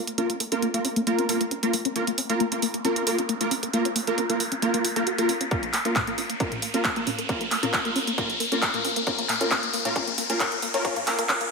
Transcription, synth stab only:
0.18 0.27 A#3 medium
0.18 0.27 F4 medium
0.18 0.27 A#4 loud
0.52 0.65 A#3 medium
0.52 0.65 F4 medium
0.52 0.65 A#4 loud
0.74 0.82 A#3 medium
0.74 0.82 F4 medium
0.74 0.82 A#4 medium
1.07 1.27 A#3 medium
1.07 1.27 F4 medium
1.07 1.27 A#4 loud
1.29 1.38 A#3 loud
1.29 1.38 F4 medium
1.29 1.38 A#4 loud
1.63 1.71 A#3 medium
1.63 1.71 F4 medium
1.63 1.71 A#4 medium
1.96 2.05 A#3 medium
1.96 2.05 F4 medium
1.96 2.05 A#4 loud
2.30 2.43 A#3 medium
2.30 2.43 F4 medium
2.30 2.43 A#4 loud
2.52 2.60 A#3 medium
2.52 2.60 F4 medium
2.52 2.60 A#4 medium
2.85 3.04 A#3 loud
2.85 3.04 F4 medium
2.85 3.04 A#4 loud
3.07 3.16 A#3 loud
3.07 3.16 F4 medium
3.07 3.16 A#4 loud
3.41 3.49 A#3 medium
3.41 3.49 F4 medium
3.41 3.49 A#4 loud
3.74 3.83 A#3 medium
3.74 3.83 F4 medium
3.74 3.83 A#4 loud
4.08 4.21 A#3 medium
4.08 4.21 F4 medium
4.08 4.21 A#4 loud
4.30 4.38 A#3 medium
4.30 4.38 F4 medium
4.30 4.38 A#4 medium
4.62 4.82 A#3 medium
4.62 4.82 F4 medium
4.62 4.82 A#4 loud
4.96 5.05 A#3 medium
4.96 5.05 F4 medium
4.96 5.05 A#4 medium
5.18 5.32 A#3 loud
5.18 5.32 F4 medium
5.18 5.32 A#4 loud
5.51 5.60 A#3 medium
5.51 5.61 F4 medium
5.51 5.60 A#4 medium
5.85 5.99 A#3 medium
5.85 5.99 F4 medium
5.85 5.99 A#4 medium
6.07 6.16 A#3 medium
6.07 6.16 F4 medium
6.07 6.16 A#4 medium
6.40 6.49 A#3 medium
6.40 6.49 F4 medium
6.40 6.49 A#4 medium
6.74 6.88 A#3 medium
6.74 6.88 F4 medium
6.74 6.88 A#4 loud
6.96 7.05 A#3 medium
6.96 7.05 F4 medium
6.96 7.05 A#4 medium
7.29 7.38 A#3 medium
7.29 7.38 F4 medium
7.29 7.38 A#4 loud
7.63 7.77 A#3 medium
7.63 7.77 F4 medium
7.63 7.77 A#4 loud
7.85 7.94 A#3 medium
7.85 7.94 F4 medium
7.85 7.94 A#4 medium
8.18 8.27 A#3 medium
8.18 8.27 F4 medium
8.18 8.27 A#4 loud
8.52 8.65 A#3 medium
8.52 8.65 F4 medium
8.52 8.65 A#4 loud
8.74 8.82 A#3 medium
8.74 8.82 F4 medium
8.74 8.82 A#4 medium
9.07 9.16 A#3 medium
9.07 9.16 F4 medium
9.07 9.16 A#4 loud
9.41 9.50 A#3 medium
9.41 9.50 F4 medium
9.41 9.50 A#4 loud
9.51 9.61 A#3 medium
9.51 9.61 F4 medium
9.51 9.61 A#4 loud
9.85 9.94 A#3 loud
9.85 9.94 F4 medium
9.85 9.94 A#4 loud
9.96 10.05 A#3 medium
9.96 10.05 F4 medium
9.96 10.05 A#4 loud
10.30 10.39 A#3 loud
10.30 10.39 F4 medium
10.30 10.39 A#4 loud
10.40 10.49 A#3 loud
10.40 10.49 F4 medium
10.40 10.49 A#4 loud
10.74 10.83 A#3 medium
10.74 10.83 F4 medium
10.74 10.83 A#4 loud
10.85 10.94 A#3 medium
10.85 10.94 F4 medium
10.85 10.94 A#4 loud
11.07 11.16 A#3 medium
11.07 11.16 F4 medium
11.07 11.16 A#4 loud
11.29 11.38 A#3 loud
11.29 11.38 F4 medium
11.29 11.38 A#4 loud

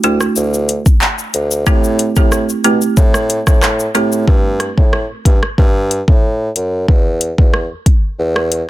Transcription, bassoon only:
0.04 0.19 D2 loud
0.36 0.80 D2 loud
1.34 1.63 D2 loud
1.67 2.11 A2 loud
2.17 2.45 A2 medium
2.65 2.80 B2 medium
2.97 3.41 A2 loud
3.47 3.89 A2 loud
3.95 4.24 A2 loud
4.28 4.72 G2 loud
4.78 5.06 A2 medium
5.25 5.41 G2 medium
5.58 6.02 G2 loud
6.08 6.50 A2 loud
6.56 6.85 F#2 medium
6.88 7.32 E2 loud
7.38 7.67 E2 medium
8.19 8.63 E2 loud

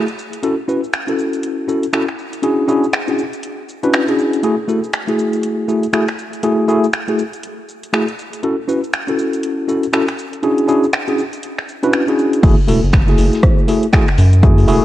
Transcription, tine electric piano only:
0.43 0.54 C#4 medium
0.43 0.54 E4 medium
0.43 0.55 F#4 medium
0.43 0.55 A4 medium
0.68 0.79 C#4 medium
0.68 0.79 E4 medium
0.68 0.80 F#4 medium
0.68 0.80 B4 medium
1.07 1.65 C#4 medium
1.07 1.66 E4 medium
1.07 1.66 F#4 medium
1.07 1.66 A4 medium
1.68 1.85 C#4 medium
1.68 1.85 E4 medium
1.68 1.85 F#4 medium
1.68 1.86 A4 medium
1.93 2.04 C#4 medium
1.93 2.04 E4 medium
1.93 2.05 F#4 medium
1.93 2.05 A4 medium
2.43 2.66 C#4 medium
2.43 2.66 D4 medium
2.43 2.66 E4 medium
2.43 2.66 F#4 medium
2.43 2.66 G#4 medium
2.68 2.85 C#4 medium
2.68 2.85 D4 medium
2.68 2.85 E4 medium
2.68 2.85 F#4 medium
2.68 2.86 G#4 medium
3.08 3.21 C#4 medium
3.08 3.21 D4 medium
3.08 3.21 E4 medium
3.08 3.21 F#4 medium
3.08 3.22 G#4 medium
3.83 4.04 C#4 medium
3.83 4.05 D4 medium
3.83 4.05 E4 medium
3.83 4.05 F#4 medium
3.83 4.05 B4 loud
4.08 4.41 C#4 medium
4.08 4.41 D4 medium
4.08 4.41 E4 medium
4.08 4.41 F#4 medium
4.08 4.41 G#4 medium
4.43 4.54 A3 medium
4.43 4.55 E4 medium
4.43 4.55 F#4 medium
4.43 4.55 G#4 medium
4.68 4.79 A3 medium
4.68 4.79 E4 medium
4.68 4.80 F#4 medium
4.68 4.80 A4 medium
5.07 5.65 A3 medium
5.07 5.66 E4 medium
5.07 5.66 F#4 medium
5.07 5.66 G#4 medium
5.68 5.85 A3 medium
5.68 5.85 E4 medium
5.68 5.85 F#4 medium
5.68 5.86 G#4 medium
5.93 6.04 A3 medium
5.93 6.04 E4 medium
5.93 6.05 F#4 medium
5.93 6.05 G#4 loud
6.43 6.66 A3 medium
6.43 6.66 E4 medium
6.43 6.66 F#4 medium
6.43 6.66 G#4 medium
6.68 6.85 A3 medium
6.68 6.85 E4 medium
6.68 6.85 F#4 medium
6.68 6.86 G#4 loud
7.08 7.21 A3 medium
7.08 7.21 E4 medium
7.08 7.21 F#4 medium
7.08 7.22 G#4 medium
7.93 8.04 A3 medium
7.93 8.04 E4 medium
7.93 8.05 F#4 medium
7.93 8.05 G#4 medium
8.43 8.54 C#4 medium
8.43 8.54 E4 medium
8.43 8.55 F#4 medium
8.43 8.55 A4 medium
8.68 8.79 C#4 medium
8.68 8.79 E4 medium
8.68 8.80 F#4 medium
8.68 8.80 B4 medium
9.07 9.65 C#4 medium
9.07 9.66 E4 medium
9.07 9.66 F#4 medium
9.07 9.66 A4 medium
9.68 9.85 C#4 medium
9.68 9.85 E4 medium
9.68 9.85 F#4 medium
9.68 9.86 A4 medium
9.93 10.04 C#4 medium
9.93 10.04 E4 medium
9.93 10.05 F#4 medium
9.93 10.05 A4 loud
10.43 10.66 C#4 medium
10.43 10.66 D4 medium
10.43 10.66 E4 medium
10.43 10.66 F#4 medium
10.43 10.66 G#4 medium
10.68 10.85 C#4 medium
10.68 10.85 D4 medium
10.68 10.85 E4 medium
10.68 10.85 F#4 medium
10.68 10.86 G#4 loud
11.08 11.21 C#4 medium
11.08 11.21 D4 medium
11.08 11.21 E4 medium
11.08 11.21 F#4 medium
11.08 11.22 G#4 medium
11.83 12.04 C#4 medium
11.83 12.05 D4 medium
11.83 12.05 E4 medium
11.83 12.05 F#4 medium
11.83 12.05 B4 loud
12.08 12.41 C#4 medium
12.08 12.41 D4 medium
12.08 12.41 E4 medium
12.08 12.41 F#4 medium
12.08 12.41 G#4 medium
12.43 12.54 A3 medium
12.43 12.54 E4 medium
12.43 12.55 F#4 medium
12.43 12.55 G#4 loud
12.68 12.79 A3 medium
12.68 12.79 E4 medium
12.68 12.80 F#4 medium
12.68 12.80 A4 medium
13.07 13.65 A3 medium
13.07 13.66 E4 medium
13.07 13.66 F#4 medium
13.07 13.66 G#4 medium
13.68 13.85 A3 medium
13.68 13.85 E4 medium
13.68 13.85 F#4 medium
13.68 13.86 G#4 medium
13.93 14.04 A3 medium
13.93 14.04 E4 medium
13.93 14.05 F#4 medium
13.93 14.05 G#4 loud
14.43 14.66 A3 medium
14.43 14.66 E4 medium
14.43 14.66 F#4 medium
14.43 14.66 G#4 loud
14.68 14.85 A3 medium
14.68 14.85 E4 medium
14.68 14.85 F#4 medium
14.68 14.85 G#4 loud

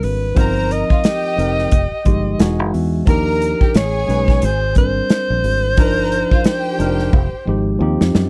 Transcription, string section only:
0.37 0.87 A#4 loud
0.37 0.87 A#5 loud
0.89 1.01 F4 medium
0.89 1.01 F5 medium
1.04 2.02 G4 medium
1.04 2.01 G5 loud
3.06 3.57 A#4 loud
3.06 3.57 A#5 loud
3.61 3.73 G4 medium
3.61 3.72 G5 medium
3.75 4.72 G#4 medium
3.75 4.73 G#5 loud
5.78 6.28 A#4 loud
5.78 6.28 A#5 loud
6.31 6.43 F4 medium
6.31 6.43 F5 medium
6.46 7.43 G4 medium
6.46 7.43 G5 loud

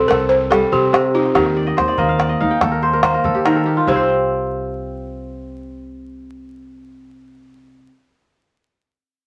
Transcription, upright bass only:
0.09 0.62 C2 medium
0.72 1.25 C3 medium
1.36 1.71 D#2 loud
1.78 1.96 D#2 medium
1.99 2.34 D#2 medium
2.41 2.59 D#2 medium
2.63 3.15 D#2 medium
3.25 3.78 D#3 medium
3.87 7.86 C2 medium

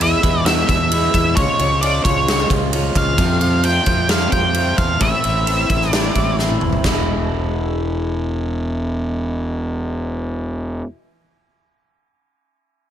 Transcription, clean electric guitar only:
0.00 0.23 E3 medium
0.00 0.23 G#3 medium
0.00 0.22 B3 medium
0.00 0.20 E4 medium
0.22 0.45 E3 medium
0.22 0.45 G#3 soft
0.22 0.46 B3 medium
0.22 0.46 E4 medium
0.45 0.90 E2 medium
0.45 0.91 B2 medium
0.45 0.70 E3 medium
0.45 0.69 G#3 medium
0.45 0.68 B3 medium
0.45 0.67 E4 medium
0.68 0.89 E3 medium
0.68 0.91 G#3 medium
0.68 0.91 B3 medium
0.68 0.93 E4 medium
0.90 1.35 E3 medium
0.90 1.35 G#3 medium
0.90 1.36 B3 medium
0.90 1.36 E4 medium
1.36 1.82 C#3 medium
1.36 1.81 F3 medium
1.36 1.61 G#3 medium
1.36 1.59 C#4 medium
1.36 1.58 F4 medium
1.59 1.82 G#3 medium
1.59 1.82 C#4 medium
1.59 1.84 F4 medium
1.82 2.27 F3 medium
1.82 2.06 G#3 medium
1.82 2.05 C#4 medium
1.82 2.04 F4 medium
2.04 2.27 G#3 soft
2.04 2.28 C#4 medium
2.04 2.28 F4 medium
2.26 2.72 C#3 medium
2.26 2.71 F3 medium
2.26 2.51 G#3 medium
2.26 2.50 C#4 medium
2.26 2.49 F4 medium
2.50 2.72 G#3 medium
2.50 2.73 C#4 soft
2.50 2.74 F4 medium
2.72 3.17 F3 medium
2.72 3.18 G#3 medium
2.72 3.18 C#4 medium
2.72 3.18 F4 medium
3.18 3.64 F2 medium
3.18 3.64 C3 medium
3.18 3.42 F3 medium
3.18 3.42 A3 medium
3.18 3.41 C4 medium
3.18 3.39 F4 medium
3.40 3.62 F3 medium
3.40 3.64 A3 medium
3.40 3.65 C4 medium
3.40 3.65 F4 medium
3.63 3.88 F3 medium
3.63 3.87 A3 medium
3.63 3.86 C4 medium
3.63 3.85 F4 medium
3.86 4.08 F3 soft
3.86 4.09 A3 soft
3.86 4.09 C4 soft
3.86 4.10 F4 soft
4.08 4.55 F2 medium
4.08 4.55 C3 medium
4.08 4.33 F3 medium
4.08 4.32 A3 medium
4.08 4.31 C4 medium
4.08 4.29 F4 medium
4.31 4.52 F3 soft
4.31 4.54 A3 soft
4.31 4.55 C4 medium
4.31 4.56 F4 medium
4.53 4.99 F3 medium
4.53 5.00 A3 medium
4.53 5.00 C4 medium
4.53 5.01 F4 medium
5.00 5.46 A2 medium
5.00 5.44 E3 medium
5.00 5.25 A3 medium
5.00 5.23 C4 medium
5.00 5.22 E4 medium
5.23 5.45 A3 medium
5.23 5.46 C4 medium
5.23 5.47 E4 medium
5.46 5.91 E3 medium
5.46 5.70 A3 medium
5.46 5.69 C4 medium
5.46 5.67 E4 medium
5.68 5.92 A3 soft
5.68 5.93 C4 soft
5.68 5.93 E4 medium
5.91 6.38 A2 medium
5.91 6.37 E3 medium
5.91 6.16 A3 medium
5.91 6.15 C4 medium
5.91 6.13 E4 medium
6.15 6.38 A3 soft
6.15 6.39 C4 medium
6.15 6.39 E4 medium
6.38 6.83 E3 medium
6.38 6.83 A3 medium
6.38 6.84 C4 medium
6.38 6.84 E4 medium
6.83 10.84 E2 medium
6.83 10.85 B2 medium
6.83 10.86 E3 medium
6.83 10.87 G#3 medium
6.83 10.87 B3 medium
6.83 10.88 E4 medium

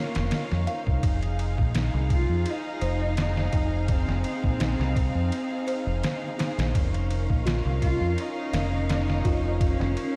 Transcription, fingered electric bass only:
0.16 0.30 F1 medium
0.52 0.66 F2 medium
0.87 1.01 C2 medium
1.03 1.55 F1 loud
1.58 1.89 A#1 loud
1.94 2.25 C2 loud
2.29 2.44 F2 medium
2.82 3.50 F1 loud
3.53 4.04 F1 medium
4.08 4.23 F1 medium
4.44 4.75 A#1 loud
4.79 5.11 C2 loud
5.15 5.30 F2 medium
5.87 6.01 F1 medium
6.58 6.73 A#1 medium
6.75 7.26 F1 loud
7.30 7.61 A#1 loud
7.65 7.97 C2 loud
8.01 8.15 F2 medium
8.53 9.22 F1 loud
9.25 9.76 F1 medium
9.80 9.94 F1 medium

